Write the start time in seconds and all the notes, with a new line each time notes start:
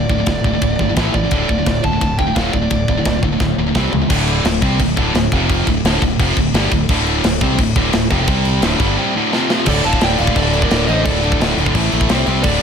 Already playing: D5
0.09 D1 D2 A2, kick
0.20 D2 A2
0.26 D1 D2 A2, kick, snare, ride bell
0.44 D1 D2 A2, kick
0.54 D2 A2
0.62 D1 D2 A2, kick, ride bell
0.79 G1 D2 A2, kick
0.89 D2 A2
0.96 A1 A2 E3 A3, kick, snare, ride bell
1.14 A1 A2 E3 D5, kick
1.24 A2 E3
1.31 D1 D2 A2 D3, kick, ride bell
1.49 D1 D2 A2, kick
1.58 D2 A2
1.66 D1 D2 A2, kick, snare, ride bell
1.84 D1 D2 A2 A5, kick
1.93 D2 A2
2.01 D1 D2 A2, kick, ride bell
2.18 D1 D2 A2 G5, kick
2.28 D2 A2
2.35 D1 D2 A2 D3 F5, kick, snare, ride bell
2.53 D1 D2 A2 D5, kick
2.62 D2 A2
2.70 D1 D2 A2, kick, ride bell
2.88 D1 D2 A2, kick
2.97 D2 A2
3.05 D1 D2 A2, kick, snare, ride bell
3.22 D1 D2 A2, kick
3.33 D2 A2
3.40 D1 D2 A2, kick, snare
3.58 D1 D2 A2
3.68 D2 A2
3.75 C2 C3 G3 C4, kick, snare
3.93 C#2 C3 G3, floor tom
4.02 C3 G3
4.10 D1 D2 A2 D3, kick, crash
4.28 crash
4.44 D1 D2 A2, snare, crash
4.61 C2 C3 G3 C4, kick, crash
4.80 D1 D2 A2, kick, crash
4.96 D1 D2 A2 D3, kick, crash
5.14 D1 D2 A2, snare, crash
5.32 F1 F2 C3 F3, kick, crash
5.49 kick, crash
5.67 D1 D2 A2, kick, crash
5.84 D1 D2 A2 D3, snare, crash
6.02 D1 D2 A2, kick, crash
6.19 F1 F2 C3 F3, kick, crash
6.37 D1 D2 A2, kick, crash
6.54 G1 G2 D3 G3, snare, crash
6.72 D1 D2 A2, kick, crash
6.89 D1 D2 A2 D3, kick, crash
7.06 crash
7.24 D1 D2 A2, snare, crash
7.41 C2 C3 G3 C4, kick, crash
7.58 D1 D2 A2, kick, crash
7.75 D1 D2 A2 D3, kick, crash
7.93 D1 D2 A2, snare, crash
8.10 F1 F2 C3 F3, kick, crash
8.27 C2 C3 G3 C4, kick, crash
8.45 crash
8.62 D1 D2 A2 D3, snare, crash
8.79 G1 G2 D3 G3, kick, crash
8.98 C3 G3 C4
9.16 D2 A2 D3
9.33 F2 C3 F3, snare
9.50 snare
9.66 D1 D2 A2 D3 A4 D5, kick, crash
9.84 D1 D2 A2 D3 F5 A5, crash
9.93 kick
10.01 D1 D2 A2 D3 D5 G5, snare, crash
10.18 D1 D2 A2 D3 D5 F5, crash
10.27 kick
10.36 D1 D2 A2 D3 A4 D5, kick, crash
10.53 D2 A2 D3, crash
10.62 A#4 D5, kick
10.71 D1 D2 A2 D3, snare, crash
10.87 A1 D2 A2 D3 C5 D#5, crash
11.04 D1 D2 A2 A4 D5, kick, crash
11.09 D3
11.23 D2 A2 D3, crash
11.32 kick
11.40 D1 D2 A2 D3, snare, crash
11.57 D1 D2 A2 D3, crash
11.66 kick
11.75 A1 A2 E3 A3, kick, crash
11.92 A#1 A2 E3 A3, crash
12.01 kick
12.09 C2 C3 G3 C4, snare, crash
12.26 C2 C3 G3 C4, crash
12.43 D1 D2 A2 D3 A4 D5, kick, crash